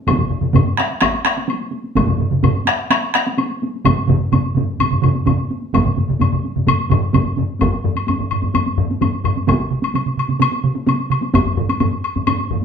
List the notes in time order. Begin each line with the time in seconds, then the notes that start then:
0.07 taiko, taiko low-mid, taiko mid, taiko high, high woodblock
0.18 taiko low-mid, taiko mid, taiko high
0.30 taiko low-mid, taiko mid
0.41 taiko low-mid, taiko mid, taiko high
0.53 taiko low-mid, taiko mid, taiko high, high woodblock
0.66 taiko high
0.77 taiko rim, taiko high
0.90 taiko high
1.01 taiko rim, taiko, taiko high, high woodblock
1.14 taiko high
1.25 taiko rim, taiko high, high woodblock
1.37 taiko high
1.48 taiko high, high woodblock
1.61 taiko high
1.72 taiko high
1.84 taiko high
1.95 taiko, taiko low-mid, taiko mid, taiko high, high woodblock
2.07 taiko low-mid, taiko mid, taiko high
2.19 taiko low-mid, taiko mid, taiko high
2.31 taiko low-mid, taiko mid, taiko high
2.43 taiko low-mid, taiko mid, taiko high, high woodblock
2.54 taiko high
2.66 taiko rim, taiko high
2.78 taiko high
2.90 taiko rim, taiko high, high woodblock
3.02 taiko high
3.14 taiko rim, taiko high
3.26 taiko high
3.38 taiko high, high woodblock
3.49 taiko high
3.62 taiko high
3.74 taiko high
3.85 taiko, taiko low-mid, taiko mid, taiko high, high woodblock
3.98 taiko high
4.08 taiko, taiko low-mid, taiko mid, taiko high
4.22 taiko high
4.32 taiko low-mid, taiko mid, taiko high, high woodblock
4.45 taiko high
4.55 taiko low-mid, taiko mid, taiko high
4.68 taiko high
4.79 taiko low-mid, taiko mid, taiko high, high woodblock
4.91 taiko low-mid, taiko mid, taiko high
5.02 taiko low-mid, taiko mid, taiko high, high woodblock
5.15 taiko high
5.26 taiko low-mid, taiko mid, taiko high, high woodblock
5.39 taiko high
5.50 taiko high
5.62 taiko high
5.73 taiko, taiko low-mid, taiko mid, taiko high, high woodblock
5.85 taiko low-mid, taiko mid
5.96 taiko low-mid, taiko mid, taiko high
6.08 taiko low-mid, taiko mid, taiko high
6.19 taiko low-mid, taiko mid, taiko high, high woodblock
6.32 taiko low-mid, taiko mid, taiko high
6.44 taiko high
6.55 taiko low-mid, taiko mid, taiko high
6.67 taiko low-mid, taiko mid, taiko high, high woodblock
6.90 taiko low-mid, taiko mid, taiko high, high woodblock
7.13 taiko, taiko low-mid, taiko mid, taiko high, high woodblock
7.25 taiko high
7.37 taiko low-mid, taiko mid, taiko high
7.49 taiko high
7.59 taiko, taiko low-mid, taiko high, high woodblock
7.85 taiko low-mid
7.96 taiko high, high woodblock
8.07 taiko low-mid, taiko high, high woodblock
8.20 taiko low-mid
8.31 taiko low-mid, high woodblock
8.42 taiko low-mid, taiko high
8.54 taiko low-mid, taiko high, high woodblock
8.66 taiko high
8.78 taiko low-mid
8.90 taiko high
9.01 taiko low-mid, taiko high, high woodblock
9.24 taiko low-mid, high woodblock
9.36 taiko high
9.47 taiko, taiko mid, taiko high, high woodblock
9.71 taiko mid
9.82 taiko high, high woodblock
9.94 taiko mid, taiko high, high woodblock
10.06 taiko mid
10.17 taiko mid, high woodblock
10.28 taiko mid, taiko high
10.39 taiko mid, taiko high, high woodblock
10.52 taiko high
10.64 taiko mid
10.75 taiko high
10.87 taiko mid, taiko high, high woodblock
11.10 taiko mid, high woodblock
11.21 taiko high
11.34 taiko, taiko low-mid, taiko high, high woodblock
11.46 taiko low-mid
11.57 taiko low-mid
11.69 taiko high, high woodblock
11.80 taiko low-mid, taiko high, high woodblock
12.04 high woodblock
12.16 taiko low-mid, taiko high
12.27 taiko low-mid, taiko high, high woodblock
12.39 taiko high
12.51 taiko low-mid
12.61 taiko high